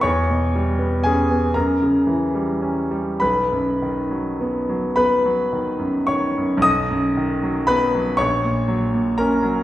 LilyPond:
<<
  \new Staff \with { instrumentName = "Grand piano" } { \time 6/8 \key b \major \tempo 4. = 38 <cis'' cis'''>4 <gis' gis''>8 <ais' ais''>4. | <b' b''>4. <b' b''>4 <cis'' cis'''>8 | <dis'' dis'''>4 <b' b''>8 <cis'' cis'''>4 <ais' ais''>8 | }
  \new Staff \with { instrumentName = "Grand piano" } { \clef bass \time 6/8 \key b \major e,16 b,16 g16 b16 cis'16 b16 fis,16 cis16 e16 g16 cis'16 g16 | b,,16 fis,16 dis16 fis16 b16 fis16 b16 fis16 dis16 fis,16 dis16 fis,16 | b,,16 fis,16 dis16 fis16 b16 fis16 ais,,16 ais,16 fis16 ais,16 cis'16 fis16 | }
>>